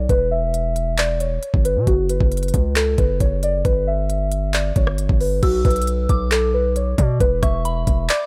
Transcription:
0.09 1.39 E1 loud
0.09 0.28 B4 loud
0.09 kick loud
0.09 closed hi-hat medium
0.31 0.94 E5 medium
0.54 closed hi-hat medium
0.76 closed hi-hat medium
0.98 1.17 D5 medium
0.98 clap loud
0.98 closed hi-hat medium
1.20 1.62 C#5 medium
1.20 closed hi-hat medium
1.43 closed hi-hat medium
1.54 1.78 G1 loud
1.54 kick loud
1.65 1.84 B4 medium
1.65 closed hi-hat medium
1.76 1.87 B2 loud
1.87 2.19 F#1 loud
1.87 2.06 F#4 loud
1.87 kick loud
1.87 closed hi-hat medium
2.09 2.72 B4 medium
2.09 closed hi-hat medium
2.21 2.53 F#1 loud
2.21 kick loud
2.32 closed hi-hat medium
2.37 closed hi-hat medium
2.43 closed hi-hat medium
2.48 closed hi-hat medium
2.54 2.97 C#2 loud
2.54 kick medium
2.54 closed hi-hat medium
2.76 2.95 A4 medium
2.76 clap loud
2.76 closed hi-hat medium
2.98 3.20 F#1 loud
2.98 3.17 B4 medium
2.98 kick loud
2.98 closed hi-hat medium
3.20 3.63 F#1 loud
3.20 3.39 C#5 medium
3.20 kick medium
3.20 closed hi-hat medium
3.43 3.62 D5 medium
3.43 closed hi-hat medium
3.65 4.72 G1 loud
3.65 3.84 B4 loud
3.65 kick loud
3.65 closed hi-hat medium
3.87 4.50 E5 medium
4.10 closed hi-hat medium
4.32 closed hi-hat medium
4.54 4.72 D5 medium
4.54 clap loud
4.54 closed hi-hat medium
4.76 5.08 G1 loud
4.76 5.18 C#5 medium
4.76 kick loud
4.76 closed hi-hat medium
4.87 cross-stick medium
4.98 closed hi-hat medium
5.09 5.41 G1 loud
5.09 kick loud
5.20 5.39 B4 medium
5.20 open hi-hat medium
5.43 5.64 B1 loud
5.43 5.61 F#4 loud
5.43 6.05 E6 loud
5.43 kick loud
5.43 closed hi-hat medium
5.43 crash loud
5.65 6.08 B1 loud
5.65 6.28 B4 medium
5.65 kick loud
5.65 closed hi-hat medium
5.70 closed hi-hat medium
5.76 closed hi-hat medium
5.82 closed hi-hat medium
5.87 closed hi-hat medium
6.09 6.95 B1 loud
6.09 7.17 D6 medium
6.09 kick medium
6.09 closed hi-hat medium
6.31 6.50 A4 medium
6.31 clap loud
6.31 closed hi-hat medium
6.54 6.73 B4 medium
6.76 6.95 C#5 medium
6.76 closed hi-hat medium
6.98 7.20 B2 loud
6.98 7.17 D5 medium
6.98 kick loud
6.98 closed hi-hat medium
7.20 7.42 E1 loud
7.20 7.39 B4 loud
7.20 kick loud
7.20 closed hi-hat medium
7.42 7.85 E1 loud
7.42 8.05 E5 medium
7.42 7.64 C#6 medium
7.42 kick loud
7.42 cross-stick medium
7.42 closed hi-hat medium
7.65 8.07 B5 medium
7.65 closed hi-hat medium
7.87 8.09 E1 loud
7.87 kick medium
7.87 closed hi-hat medium
8.09 8.26 D5 medium
8.09 8.26 D6 medium
8.09 clap loud
8.09 closed hi-hat medium

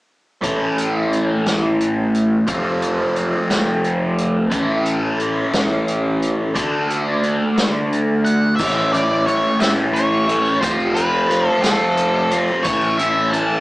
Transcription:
0.42 1.30 A1 medium
0.42 2.46 A2 medium
0.42 2.46 E3 medium
0.42 2.47 A3 medium
0.42 2.46 C#4 medium
0.42 2.47 E4 medium
0.42 2.48 A4 medium
0.42 kick medium
0.42 closed hi-hat medium
0.78 closed hi-hat medium
1.13 closed hi-hat soft
1.46 2.32 A1 medium
1.46 kick medium
1.46 snare medium
1.46 closed hi-hat medium
1.81 closed hi-hat medium
2.15 closed hi-hat medium
2.47 3.34 F1 medium
2.47 4.50 F3 medium
2.47 4.51 A3 medium
2.47 4.50 C4 medium
2.47 4.51 F4 medium
2.47 4.52 A4 medium
2.47 kick loud
2.47 closed hi-hat medium
2.82 closed hi-hat medium
3.16 closed hi-hat soft
3.50 4.36 F1 medium
3.50 kick medium
3.50 snare loud
3.50 closed hi-hat medium
3.84 closed hi-hat soft
4.18 closed hi-hat medium
4.50 5.38 A1 medium
4.50 6.53 A2 medium
4.50 6.54 E3 medium
4.50 6.56 A3 medium
4.50 6.54 C#4 medium
4.50 6.54 E4 medium
4.50 6.57 A4 medium
4.50 kick loud
4.50 closed hi-hat medium
4.86 closed hi-hat medium
5.20 closed hi-hat soft
5.53 6.39 A1 medium
5.53 kick medium
5.53 snare medium
5.53 closed hi-hat medium
5.88 closed hi-hat soft
6.22 closed hi-hat medium
6.55 7.42 D2 medium
6.55 8.57 D3 medium
6.55 8.58 A3 medium
6.55 8.58 D4 medium
6.55 8.58 F#4 medium
6.55 8.59 A4 medium
6.55 kick loud
6.55 closed hi-hat medium
6.90 closed hi-hat medium
7.23 closed hi-hat soft
7.57 8.44 D2 medium
7.57 snare medium
7.57 closed hi-hat medium
7.93 closed hi-hat soft
8.25 8.56 F#5 medium
8.25 closed hi-hat medium
8.56 9.45 A1 medium
8.56 9.27 A2 medium
8.56 9.25 E3 medium
8.56 8.94 A3 medium
8.56 8.89 E5 medium
8.56 kick loud
8.56 tambourine medium
8.60 8.93 C#4 medium
8.60 8.92 E4 loud
8.60 crash medium
8.76 tambourine soft
8.92 9.27 A3 medium
8.92 9.27 C#4 medium
8.92 9.28 E4 medium
8.92 9.26 D5 medium
8.92 closed hi-hat medium
9.26 9.61 E3 medium
9.26 9.62 A3 medium
9.26 9.60 C#4 medium
9.26 9.59 E4 medium
9.26 9.62 C#5 medium
9.26 closed hi-hat soft
9.60 10.47 A1 medium
9.60 10.62 A2 medium
9.60 10.59 E3 medium
9.60 10.29 A3 medium
9.60 10.28 C#4 medium
9.60 10.26 E4 medium
9.60 9.69 E5 medium
9.60 snare loud
9.60 closed hi-hat medium
9.60 tambourine medium
9.94 10.60 C#5 medium
9.94 closed hi-hat medium
10.27 10.61 A3 medium
10.27 10.61 C#4 medium
10.27 10.60 E4 medium
10.27 closed hi-hat medium
10.46 tambourine soft
10.60 11.48 F1 medium
10.60 11.27 F3 medium
10.60 10.96 A3 medium
10.60 10.95 C4 medium
10.60 10.94 F4 loud
10.60 10.70 C5 medium
10.60 kick loud
10.60 closed hi-hat medium
10.60 tambourine medium
10.80 tambourine soft
10.94 11.29 A3 medium
10.94 11.29 C4 medium
10.94 11.29 F4 medium
10.94 11.47 B4 medium
10.94 closed hi-hat medium
11.28 11.64 F3 medium
11.28 11.64 A3 medium
11.28 11.63 C4 medium
11.28 11.62 F4 medium
11.28 closed hi-hat medium
11.47 11.62 A4 medium
11.62 12.49 F1 medium
11.62 12.64 F3 medium
11.62 12.33 A3 medium
11.62 12.32 C4 medium
11.62 12.31 F4 medium
11.62 12.35 A4 medium
11.62 snare medium
11.62 closed hi-hat medium
11.62 tambourine medium
11.97 closed hi-hat medium
12.31 12.66 A3 medium
12.31 12.64 C4 medium
12.31 12.64 F4 medium
12.31 closed hi-hat medium
12.31 tambourine soft
12.48 tambourine soft
12.63 13.50 A1 medium
12.63 13.33 A2 medium
12.63 13.31 E3 medium
12.63 13.01 A3 medium
12.63 12.98 E4 medium
12.63 12.96 C#5 medium
12.63 kick loud
12.63 closed hi-hat medium
12.63 tambourine medium
12.67 12.99 C#4 medium
12.81 tambourine soft
12.97 13.33 A3 medium
12.97 13.33 C#4 medium
12.97 13.33 E4 medium
12.97 13.33 E5 medium
12.97 closed hi-hat medium
13.31 13.60 E3 medium
13.31 13.60 A3 medium
13.31 13.60 C#4 medium
13.31 13.60 A5 loud
13.31 closed hi-hat medium
13.35 13.60 E4 medium

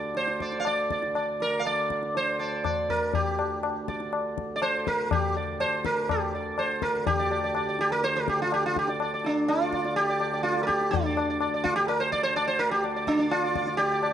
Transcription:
0.00 7.06 D2 medium
0.00 7.06 D3 medium
0.00 0.15 D5 soft
0.15 0.61 C5 medium
0.15 tabla te medium
0.28 tabla te medium
0.40 0.59 D5 soft
0.40 tabla ke medium
0.52 tabla te medium
0.60 0.66 F5 medium
0.65 0.91 D5 medium
0.65 tabla na medium
0.90 1.15 D5 soft
0.90 tabla ke medium
1.02 tabla te medium
1.15 1.39 D5 soft
1.15 tabla na medium
1.40 1.60 A#4 medium
1.40 tabla te medium
1.59 1.66 F5 medium
1.65 2.16 D5 medium
1.65 tabla na medium
1.90 tabla ke medium
2.03 tabla te medium
2.15 2.92 C5 medium
2.15 tabla tin medium
2.39 2.63 D5 soft
2.39 tabla na medium
2.64 2.87 D5 soft
2.64 tabla na medium
2.64 tabla ge medium
2.89 3.14 A#4 medium
2.89 tabla ge medium
3.13 3.84 G4 medium
3.13 tabla tin loud
3.13 tabla ge medium
3.39 tabla na medium
3.63 tabla na medium
3.88 4.11 D5 soft
3.88 tabla ke medium
4.00 tabla te medium
4.13 tabla na medium
4.38 tabla ke medium
4.56 4.62 D5 medium
4.62 4.87 C5 medium
4.62 tabla na medium
4.87 5.12 A#4 medium
4.87 tabla ke medium
5.11 5.35 G4 medium
5.11 tabla na medium
5.11 tabla ge medium
5.37 5.59 D5 soft
5.60 5.83 C5 medium
5.60 tabla na medium
5.85 6.10 A#4 medium
5.85 tabla ke medium
6.09 6.33 G4 medium
6.09 tabla na medium
6.09 tabla ge medium
6.35 6.57 D5 soft
6.58 6.83 C5 medium
6.58 tabla na medium
6.82 7.06 A#4 medium
6.82 tabla ke medium
7.06 14.13 D2 medium
7.06 14.13 D3 medium
7.06 7.76 G4 medium
7.06 tabla tin loud
7.06 tabla ge loud
7.19 7.30 D5 soft
7.31 7.43 D5 soft
7.31 tabla na medium
7.44 7.55 D5 soft
7.55 7.67 D5 soft
7.55 tabla na medium
7.69 7.91 D5 soft
7.79 7.92 G4 medium
7.79 tabla te medium
7.92 8.04 A#4 medium
8.04 8.16 C5 loud
8.04 tabla te medium
8.16 8.29 A#4 medium
8.16 tabla te medium
8.28 8.41 G4 medium
8.28 tabla ke medium
8.40 8.53 F4 medium
8.40 tabla te medium
8.52 8.65 G4 medium
8.52 tabla na medium
8.66 8.78 F4 medium
8.76 8.89 G4 medium
8.76 tabla ke medium
8.88 9.01 D5 soft
8.88 tabla te medium
9.00 9.13 D5 soft
9.00 tabla na medium
9.14 9.36 D5 soft
9.25 9.48 D4 medium
9.25 tabla te medium
9.48 9.96 F4 medium
9.48 tabla na medium
9.62 9.73 D5 soft
9.73 9.84 D5 soft
9.73 tabla ke medium
9.85 10.07 D5 soft
9.85 tabla te medium
9.96 10.43 G4 medium
9.96 tabla tin medium
10.10 10.20 D5 soft
10.20 10.32 D5 soft
10.20 tabla na medium
10.33 10.56 D5 soft
10.43 10.62 F4 medium
10.43 tabla te medium
10.57 tabla te medium
10.63 10.93 G4 medium
10.63 10.66 A#4 medium
10.69 tabla ke medium
10.81 tabla te medium
10.91 11.66 D4 medium
10.91 tabla tin loud
10.91 tabla ge loud
11.06 11.17 D5 soft
11.17 11.29 D5 soft
11.17 tabla na medium
11.30 11.40 D5 soft
11.41 11.53 D5 soft
11.41 tabla na medium
11.54 11.76 D5 soft
11.64 11.75 F4 medium
11.64 tabla ke medium
11.76 11.88 G4 loud
11.76 tabla te medium
11.88 12.01 A#4 medium
11.88 tabla na medium
12.00 12.12 C5 medium
12.12 12.23 D5 medium
12.12 tabla ke medium
12.23 12.36 C5 loud
12.36 12.47 D5 medium
12.36 tabla na medium
12.48 12.60 C5 loud
12.59 12.71 A#4 medium
12.59 tabla te medium
12.71 12.83 G4 medium
12.84 12.95 D5 soft
12.84 tabla na medium
12.96 13.18 D5 soft
13.07 13.30 D4 medium
13.07 tabla ke medium
13.19 13.42 D5 soft
13.19 tabla te medium
13.31 13.77 F4 medium
13.31 tabla na medium
13.44 13.54 D5 soft
13.55 13.66 D5 soft
13.55 tabla ke medium
13.67 13.90 D5 soft
13.67 tabla te medium
13.77 14.13 G4 loud
13.77 tabla tin medium
13.91 14.02 D5 soft
14.03 14.13 D5 soft
14.03 tabla na medium

